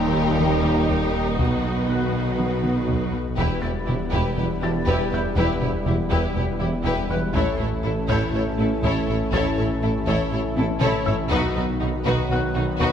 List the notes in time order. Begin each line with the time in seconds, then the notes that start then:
Already playing: D#1 D#2 D#3 G3 A#3 D#4 G4 A#4 C5 C6
0.14 D#2
0.39 D#3, taiko mid
0.64 D#3, taiko mid
0.90 D#2, taiko
1.15 D#2
1.38 B1 B2 F#3 B3 F#4 B4, taiko
1.65 B3
1.89 B3 F#6
2.13 B2
2.39 B3, taiko mid
2.63 B3, taiko mid
2.88 B2, taiko
3.13 B2
3.36 E1 E2 E3 G3 B3 E4 G4 B4, taiko
3.61 E1 E2 E4 G4 B4 A6, taiko low-mid
3.86 E1 E2 E4 G4, taiko low-mid
4.11 E1 E2 E4 G4 B4, taiko
4.37 E1 E2 E4 G4 B4, taiko low-mid
4.62 E1 E2 E3 E4 G4 A5 A6
4.86 E1 E2 E4 G4 B4, taiko
5.11 E1 E2 E4 G4 B4 G6
5.36 E1 E2 E4 G4 B4, taiko
5.61 E1 E2 E4 G4 B4, taiko low-mid
5.86 E1 E2 E4 G4, taiko low-mid
6.10 E1 E2 E4 G4 B4, taiko
6.35 E1 E2 E4 G4 B4, taiko low-mid
6.59 E1 E2 E3 E4 G4
6.84 E1 E2 E4 G4 B4, taiko
7.09 E1 E2 E4 G4 B4 F#6
7.34 A1 A2 E3 A3 C#4 E4 A4 C#5, taiko
7.59 A1 A2 E4 A4 C#5
7.84 A1 A2 E4 A4
8.08 A1 A2 E4 A4 C#5 G6, taiko
8.33 A1 A2 E4 A4 C#5
8.58 A1 A2 A3 E4 A4
8.83 A1 A2 E4 A4 C#5, taiko
9.08 A1 A2 E4 A4 C#5
9.32 A1 A2 E4 A4 C#5 A6, taiko
9.57 A1 A2 E4 A4 C#5
9.82 A1 A2 E4 A4
10.06 A1 A2 E4 A4 C#5, taiko
10.31 A1 A2 E4 A4 C#5
10.57 A1 A2 A3 E4 A4, taiko high
10.81 A1 A2 E4 A4 C#5, taiko low-mid
11.05 A1 A2 E4 A4 C#5 E5 E6, taiko low
11.30 B1 B2 D#3 F#3 B3 D#4 F#4 B4, taiko
11.55 B1 B2 D#4 F#4 B4
11.80 B1 B2 D#4 F#4
12.05 B1 B2 D#4 F#4 B4, taiko
12.29 B1 B2 D#4 F#4 B4 F#5 F#6
12.55 B1 B2 B3 D#4 F#4
12.80 B1 B2 D#4 F#4 B4 C#6, taiko